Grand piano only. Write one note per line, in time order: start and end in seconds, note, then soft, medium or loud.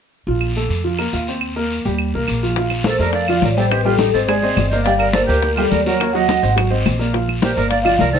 0.28 0.51 F3 medium
0.28 0.51 F4 medium
0.56 0.79 A3 medium
0.56 0.80 A4 medium
0.84 0.96 F3 medium
0.84 0.96 F4 medium
0.99 1.10 A#3 medium
0.99 1.10 A#4 medium
1.13 1.25 F4 medium
1.13 1.25 F5 medium
1.28 1.51 C4 medium
1.28 1.51 C5 medium
1.56 1.80 A#3 medium
1.56 1.80 A#4 medium
1.85 2.08 G3 medium
1.85 2.09 G4 medium
2.15 2.38 A#3 medium
2.15 2.38 A#4 medium
2.43 2.54 F3 medium
2.43 2.54 F4 medium
2.57 2.80 F3 medium
2.57 2.81 F4 medium
2.57 2.81 F5 medium
2.85 2.97 A3 medium
2.85 2.97 A4 medium
2.85 2.97 A#4 medium
3.00 3.23 A3 medium
3.00 3.24 A4 medium
3.00 3.24 A#4 medium
3.29 3.52 F3 medium
3.29 3.52 F4 medium
3.29 3.52 F5 medium
3.57 3.69 G3 medium
3.57 3.69 G4 medium
3.57 3.69 G5 medium
3.71 3.82 C4 medium
3.71 3.83 C5 medium
3.71 3.83 D#5 medium
3.85 4.08 G3 medium
3.85 4.09 G4 medium
3.85 4.09 G5 medium
4.14 4.26 C4 medium
4.14 4.26 C5 medium
4.14 4.26 D#5 medium
4.28 4.40 G#3 medium
4.28 4.40 G#4 medium
4.28 4.40 G#5 medium
4.43 4.66 C4 medium
4.43 4.66 C5 medium
4.43 4.67 D#5 medium
4.73 4.84 A#3 medium
4.73 4.84 A#4 medium
4.73 4.84 D5 medium
4.86 5.09 G3 medium
4.86 5.10 G4 medium
4.86 5.10 G5 medium
5.15 5.26 A#3 medium
5.15 5.27 A#4 medium
5.15 5.27 D5 medium
5.28 5.52 A#3 medium
5.28 5.52 A#4 medium
5.28 5.52 D5 medium
5.57 5.81 G3 medium
5.57 5.81 G4 medium
5.57 5.81 G5 medium
5.87 5.98 F#3 medium
5.87 5.98 F#4 medium
5.87 5.99 F#5 medium
6.01 6.12 A#3 medium
6.01 6.12 A#4 medium
6.01 6.13 C#5 medium
6.14 6.38 F#3 medium
6.14 6.38 F#4 medium
6.14 6.38 F#5 medium
6.42 6.54 C4 medium
6.42 6.55 C5 medium
6.42 6.55 D#5 medium
6.56 6.68 F#3 medium
6.56 6.69 F#4 medium
6.56 6.69 F#5 medium
6.71 6.94 C4 medium
6.71 6.94 C5 medium
6.71 6.94 D#5 medium
6.99 7.12 A#3 medium
6.99 7.11 A#4 medium
6.99 7.12 D5 medium
7.14 7.37 F3 medium
7.14 7.37 F4 medium
7.14 7.37 F5 medium
7.42 7.54 A#3 medium
7.42 7.55 A#4 medium
7.42 7.54 D5 medium
7.57 7.81 A#3 medium
7.57 7.81 A#4 medium
7.57 7.81 D5 medium
7.85 8.09 F3 medium
7.85 8.09 F4 medium
7.85 8.09 F5 medium
8.13 8.19 D#3 medium
8.13 8.19 D#4 medium
8.13 8.19 D#5 medium